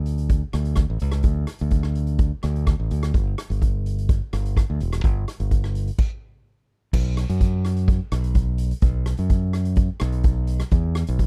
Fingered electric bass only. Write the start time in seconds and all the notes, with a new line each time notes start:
Already playing: D2
0.54 D2
0.90 A1
1.02 C#2
1.24 D2
1.61 D2
2.44 D2
2.80 A1
2.91 D2
3.14 G1
3.50 G1
4.33 G1
4.70 D2
4.81 E1
5.04 G1
5.40 G1
6.94 B1
7.29 F#2
8.12 B1
8.82 B1
9.19 F#2
10.01 B1
10.72 E2
11.08 B1